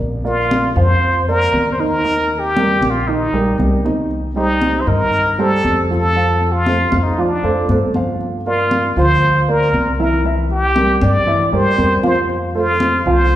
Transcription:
0.00 0.72 A#1 medium
0.24 0.67 A#3 medium
0.24 0.80 F4 medium
0.24 0.67 A#4 medium
0.24 0.67 D5 medium
0.24 high conga soft
0.51 high conga medium
0.76 1.49 F2 medium
0.76 1.18 F3 medium
0.76 1.19 F4 medium
0.76 1.28 C5 medium
0.76 1.19 F5 medium
0.76 high conga soft
1.03 high conga soft
1.28 1.70 A#3 medium
1.28 1.70 A#4 medium
1.28 1.70 D5 medium
1.28 high conga soft
1.53 2.75 D#2 medium
1.53 high conga medium
1.72 1.82 C5 medium
1.79 2.00 D#3 medium
1.79 2.00 D#4 medium
1.79 2.41 A#4 loud
1.79 2.00 D#5 medium
1.79 high conga soft
2.04 2.47 D#3 medium
2.04 2.47 D#4 medium
2.04 2.47 D#5 medium
2.04 high conga soft
2.31 high conga soft
2.39 2.92 G4 loud
2.56 2.98 G3 medium
2.56 2.99 G4 medium
2.56 2.99 A#4 medium
2.56 high conga medium
2.81 3.29 A#1 medium
2.81 high conga medium
2.91 3.09 F4 medium
3.08 3.29 D#3 medium
3.08 3.59 D#4 medium
3.08 3.29 D#4 medium
3.08 3.29 D#5 medium
3.08 high conga soft
3.32 3.56 A#1 medium
3.32 3.54 G3 medium
3.32 3.55 G4 medium
3.32 3.55 A#4 medium
3.32 high conga soft
3.58 4.80 C2 medium
3.58 3.80 G3 medium
3.58 3.80 G4 medium
3.58 3.80 A#4 medium
3.58 high conga medium
3.85 4.27 D#3 medium
3.85 4.27 D#4 medium
3.85 4.27 D#5 medium
3.85 high conga medium
4.11 high conga soft
4.36 4.78 G3 medium
4.36 4.82 D#4 medium
4.36 4.78 G4 medium
4.36 4.78 C5 medium
4.36 high conga soft
4.62 high conga medium
4.81 4.90 C5 medium
4.87 5.60 G2 medium
4.87 5.29 D#3 medium
4.87 5.29 D#4 medium
4.87 5.42 A#4 loud
4.87 5.29 D#5 medium
4.87 high conga soft
5.13 high conga soft
5.38 5.80 G3 medium
5.38 5.81 G4 medium
5.38 5.90 A4 medium
5.38 5.81 C5 medium
5.38 high conga soft
5.64 6.85 F2 medium
5.64 high conga medium
5.90 6.11 F3 medium
5.90 6.11 F4 medium
5.90 6.54 A4 medium
5.90 6.11 F5 medium
5.90 high conga soft
6.16 6.58 F3 medium
6.16 6.58 F4 medium
6.16 6.58 F5 medium
6.16 high conga soft
6.41 high conga soft
6.52 7.05 F4 medium
6.66 7.09 A3 medium
6.66 7.09 A4 medium
6.66 7.09 C5 medium
6.66 high conga medium
6.92 7.40 F2 medium
6.92 high conga medium
7.03 7.22 D#4 medium
7.18 7.39 F3 medium
7.18 7.70 D4 medium
7.18 7.39 F4 medium
7.18 7.39 F5 medium
7.18 high conga soft
7.43 7.67 F2 medium
7.43 7.65 A3 medium
7.43 7.65 A4 medium
7.43 7.65 C5 medium
7.43 high conga soft
7.69 8.90 G2 medium
7.69 7.90 A3 medium
7.69 7.90 A4 medium
7.69 7.90 C5 medium
7.69 high conga medium
7.94 8.37 F3 medium
7.94 8.37 F4 medium
7.94 8.37 F5 medium
7.94 high conga medium
8.21 high conga soft
8.46 8.88 A#3 medium
8.46 8.94 F4 medium
8.46 8.88 A#4 medium
8.46 8.89 D5 medium
8.46 high conga soft
8.71 high conga medium
8.96 9.69 D2 medium
8.96 9.39 F3 medium
8.96 9.39 F4 medium
8.96 9.52 C5 medium
8.96 9.39 F5 medium
8.96 high conga soft
9.23 high conga soft
9.48 9.90 A#3 medium
9.48 9.90 A#4 medium
9.48 10.00 A#4 medium
9.48 9.91 D5 medium
9.48 high conga soft
9.73 10.95 C2 medium
9.73 high conga medium
9.99 10.21 E3 medium
9.99 10.20 E4 medium
9.99 10.24 A#4 medium
9.99 10.21 E5 medium
9.99 high conga soft
10.25 10.67 E3 medium
10.25 10.67 E4 medium
10.25 10.67 E5 medium
10.25 high conga soft
10.50 11.05 G4 medium
10.50 high conga soft
10.76 11.18 G3 medium
10.76 11.18 G4 medium
10.76 11.18 A#4 medium
10.76 high conga medium
11.01 11.49 G2 medium
11.01 11.56 D5 medium
11.01 high conga medium
11.27 11.48 E3 medium
11.27 11.48 E4 medium
11.27 11.48 E5 medium
11.27 high conga soft
11.53 11.77 G2 medium
11.53 11.74 G3 medium
11.53 11.74 G4 medium
11.53 11.74 A#4 medium
11.53 12.05 C5 medium
11.53 high conga soft
11.78 13.00 F2 medium
11.78 11.99 G3 medium
11.78 11.99 G4 medium
11.78 12.00 A#4 medium
11.78 high conga medium
12.03 12.46 F3 medium
12.03 12.46 F4 medium
12.03 12.29 C5 medium
12.03 12.46 F5 medium
12.03 high conga medium
12.30 high conga soft
12.55 12.97 A3 medium
12.55 13.10 F4 loud
12.55 12.97 A4 medium
12.55 12.97 C5 medium
12.55 high conga soft
12.80 high conga medium
13.06 13.36 C2 medium
13.06 13.36 F3 medium
13.06 13.36 F4 medium
13.06 13.36 C5 medium
13.06 13.36 F5 medium
13.06 high conga soft
13.32 high conga soft

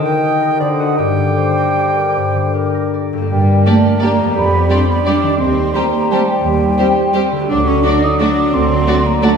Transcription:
0.00 0.62 D#3 soft
0.00 0.62 A#4 soft
0.00 0.79 D#5 soft
0.00 0.60 D#6 soft
0.05 0.99 D#4 soft
0.05 0.59 G5 medium
0.23 0.62 G4 soft
0.42 0.62 A#4 soft
0.60 0.99 D3 soft
0.60 1.00 D3 soft
0.60 0.99 C5 soft
0.60 0.68 D5 medium
0.60 1.01 D#6 soft
0.78 1.00 F#4 soft
0.78 1.00 D#5 soft
0.78 0.97 F#5 soft
0.97 2.15 G2 soft
0.97 3.13 G3 medium
0.97 1.33 A#4 soft
0.97 2.90 G5 medium
0.97 3.04 D6 soft
1.17 2.34 D3 soft
1.37 1.96 G4 soft
1.37 1.99 C5 medium
1.59 2.73 A#4 soft
1.79 2.93 D5 soft
1.97 2.53 G4 soft
1.97 2.18 A#4 soft
2.16 3.12 G2 soft
2.16 2.55 C5 soft
2.35 3.33 D3 soft
2.54 3.12 G4 soft
2.54 2.96 A#4 soft
2.74 4.37 A#4 soft
2.94 3.25 D5 soft
3.13 4.28 G2 soft
3.13 3.21 G4 soft
3.13 3.21 A4 soft
3.17 4.30 A#3 soft
3.22 4.26 G4 soft
3.26 4.31 D5 soft
3.30 3.60 G2 medium
3.30 3.64 G3 medium
3.30 5.37 G3 medium
3.30 4.37 A#4 soft
3.30 5.36 D5 soft
3.30 3.64 G5 medium
3.65 4.02 A3 soft
3.65 3.79 A#3 soft
3.65 3.74 A#3 soft
3.65 3.78 D4 soft
3.65 3.74 G4 soft
3.65 3.74 D5 soft
3.65 4.03 A5 medium
4.00 4.10 A#3 soft
4.00 4.36 A#3 medium
4.00 4.15 A#3 soft
4.00 4.14 D4 soft
4.00 4.10 G4 soft
4.00 4.08 D5 soft
4.00 4.36 A#5 medium
4.18 5.33 F2 soft
4.23 5.26 G3 soft
4.27 5.31 G4 soft
4.32 4.70 B3 medium
4.32 5.40 G4 soft
4.32 5.40 D5 soft
4.36 4.65 F2 medium
4.36 4.71 B5 medium
4.70 4.78 G3 soft
4.70 4.84 G3 soft
4.70 4.89 C4 medium
4.70 4.84 D4 soft
4.70 4.78 G4 soft
4.70 4.78 D5 soft
4.70 4.89 C6 medium
4.89 5.07 B3 soft
4.89 5.09 B5 medium
5.05 5.15 G3 soft
5.05 5.20 G3 soft
5.05 5.39 D4 medium
5.05 5.20 D4 soft
5.05 5.15 G4 soft
5.05 5.13 D5 soft
5.05 5.39 D6 medium
5.23 7.42 D#3 soft
5.27 7.44 G3 soft
5.32 7.47 G4 soft
5.37 5.74 C4 medium
5.37 7.49 C5 soft
5.37 7.46 C5 soft
5.37 5.78 C6 medium
5.41 5.69 D#2 soft
5.41 7.46 G3 medium
5.41 7.51 G4 soft
5.74 5.88 G3 soft
5.74 5.84 G3 soft
5.74 6.11 A#3 medium
5.74 5.88 C4 soft
5.74 5.83 G4 soft
5.74 5.83 C5 soft
5.74 6.13 A#5 medium
6.11 6.20 G3 soft
6.11 6.24 G3 soft
6.11 6.28 A3 medium
6.11 6.24 C4 soft
6.11 6.20 G4 soft
6.11 6.20 C5 soft
6.11 6.31 A5 medium
6.28 7.32 G3 soft
6.28 7.26 G5 medium
6.44 6.72 D#2 medium
6.78 6.91 G3 soft
6.78 6.87 G3 soft
6.78 6.92 C4 soft
6.78 6.86 G4 soft
6.78 6.86 C5 soft
7.14 7.23 G3 soft
7.14 7.28 G3 soft
7.14 7.28 C4 soft
7.14 7.22 G4 soft
7.14 7.23 C5 soft
7.32 9.37 D3 soft
7.37 9.37 A3 soft
7.41 9.37 F#4 soft
7.45 7.65 D4 medium
7.45 9.37 D5 soft
7.50 7.79 D2 medium
7.50 9.37 F#3 soft
7.50 9.37 A4 medium
7.50 9.37 D5 medium
7.50 7.69 D6 medium
7.66 7.84 C#4 medium
7.66 7.85 C#6 medium
7.84 7.98 F#3 soft
7.84 7.93 A3 soft
7.84 8.02 D4 medium
7.84 7.98 D4 soft
7.84 7.93 F#4 soft
7.84 7.94 D5 soft
7.84 8.06 D6 medium
8.02 8.20 D#4 medium
8.02 8.21 D#6 medium
8.19 8.33 F#3 soft
8.19 8.28 A3 soft
8.19 8.52 D4 medium
8.19 8.32 D4 soft
8.19 8.29 F#4 soft
8.19 8.29 D5 soft
8.19 8.56 D6 medium
8.53 8.81 D2 medium
8.53 9.05 C4 medium
8.53 9.08 C6 medium
8.86 9.00 F#3 soft
8.86 8.94 A3 soft
8.86 9.00 D4 soft
8.86 8.95 F#4 soft
8.86 8.96 D5 soft
9.04 9.22 A#3 medium
9.04 9.26 A#5 medium
9.22 9.36 F#3 soft
9.22 9.30 A3 soft
9.22 9.37 A3 medium
9.22 9.36 D4 soft
9.22 9.30 F#4 medium
9.22 9.31 D5 soft
9.22 9.37 A5 medium

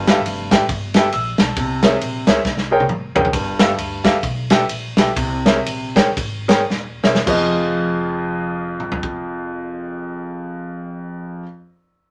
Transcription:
0.00 0.19 G1 loud
0.00 0.48 G2 medium
0.07 0.17 G4 medium
0.07 0.18 A4 medium
0.07 0.18 B4 medium
0.07 0.18 E5 medium
0.07 0.18 F5 medium
0.07 snare loud
0.07 ride medium
0.26 0.48 F1 loud
0.26 ride medium
0.51 0.67 A1 loud
0.51 0.61 G4 medium
0.51 0.61 A4 medium
0.51 0.62 B4 medium
0.51 0.62 E5 medium
0.51 0.62 G5 medium
0.51 kick medium
0.51 snare loud
0.51 ride medium
0.69 1.07 G1 loud
0.69 kick loud
0.69 ride medium
0.94 1.06 G4 medium
0.94 1.06 A4 medium
0.94 1.06 B4 medium
0.94 1.06 E5 medium
0.94 1.06 G5 loud
0.94 snare loud
0.94 ride medium
1.12 1.36 A#1 loud
1.12 1.39 E6 medium
1.12 ride medium
1.38 1.55 B1 medium
1.38 1.82 A5 medium
1.38 snare loud
1.38 ride medium
1.56 1.95 C2 loud
1.56 2.24 C3 medium
1.56 kick loud
1.56 ride medium
1.82 1.93 G#4 medium
1.82 1.93 A#4 medium
1.82 1.94 C5 medium
1.82 1.94 C#5 medium
1.82 1.94 E5 loud
1.82 snare loud
1.82 ride medium
2.01 2.24 A#1 loud
2.01 ride medium
2.27 2.43 C#2 medium
2.27 2.38 G#4 medium
2.27 2.38 A#4 medium
2.27 2.38 C5 medium
2.27 2.38 C#5 medium
2.27 2.38 E5 loud
2.27 snare loud
2.27 ride medium
2.45 2.83 C2 loud
2.45 kick loud
2.45 snare medium
2.58 snare medium
2.71 2.81 G#4 medium
2.71 2.82 A#4 medium
2.71 2.82 C5 medium
2.71 2.82 C#5 medium
2.71 2.82 G5 loud
2.80 high tom medium
2.89 3.12 F1 medium
2.89 mid tom medium
3.15 3.31 F#1 medium
3.15 3.25 G#4 medium
3.15 3.26 A#4 medium
3.15 3.26 C5 medium
3.15 3.26 C#5 medium
3.15 3.26 G5 medium
3.15 floor tom loud
3.25 floor tom medium
3.33 3.71 G1 loud
3.33 4.00 G2 medium
3.33 kick loud
3.33 ride medium
3.59 3.70 G4 medium
3.59 3.70 A4 medium
3.59 3.70 B4 medium
3.59 3.70 E5 medium
3.59 3.70 F5 medium
3.59 snare loud
3.59 ride medium
3.77 4.16 D2 medium
3.77 ride medium
4.04 4.14 G4 medium
4.04 4.15 A4 medium
4.04 4.15 B4 medium
4.04 4.15 E5 medium
4.04 4.15 F5 medium
4.04 kick medium
4.04 snare loud
4.04 ride medium
4.23 4.62 B1 loud
4.23 kick loud
4.23 ride medium
4.50 4.61 G4 medium
4.50 4.61 A4 medium
4.50 4.61 B4 medium
4.50 4.61 E5 medium
4.50 4.61 G5 loud
4.50 snare loud
4.50 ride medium
4.69 4.93 A#1 loud
4.69 ride medium
4.97 5.14 B1 medium
4.97 5.08 G4 medium
4.97 5.08 A4 medium
4.97 5.08 B4 medium
4.97 5.08 E5 medium
4.97 5.08 G5 medium
4.97 snare loud
4.97 ride medium
5.16 5.58 C2 loud
5.16 5.92 C3 medium
5.16 kick loud
5.16 ride medium
5.46 5.56 G#4 medium
5.46 5.56 A#4 medium
5.46 5.56 C5 medium
5.46 5.57 C#5 medium
5.46 5.57 E5 medium
5.46 snare loud
5.46 ride medium
5.66 6.09 A#1 medium
5.66 ride medium
5.96 6.07 G#4 medium
5.96 6.07 A#4 medium
5.96 6.07 C5 medium
5.96 6.07 C#5 medium
5.96 6.07 G5 medium
5.96 kick medium
5.96 snare loud
5.96 ride medium
6.17 6.62 G#1 medium
6.17 kick loud
6.17 ride medium
6.48 6.60 G#4 medium
6.48 6.60 A#4 medium
6.48 6.60 C5 medium
6.48 6.60 C#5 medium
6.48 6.61 G5 medium
6.48 snare loud
6.48 ride medium
6.70 6.98 D#1 medium
6.70 snare medium
7.03 7.23 E1 medium
7.03 7.16 G#4 medium
7.03 7.16 A#4 medium
7.03 7.16 C5 medium
7.03 7.16 C#5 medium
7.03 7.17 E5 medium
7.03 snare loud
7.15 snare loud
7.26 11.41 F1 loud
7.26 11.42 F2 medium
7.26 11.40 F4 medium
7.26 11.41 G#4 medium
7.26 11.43 C5 medium
7.26 11.44 D#5 loud
7.26 kick loud
7.26 crash medium
8.80 mid tom medium
8.92 floor tom medium
9.03 kick medium

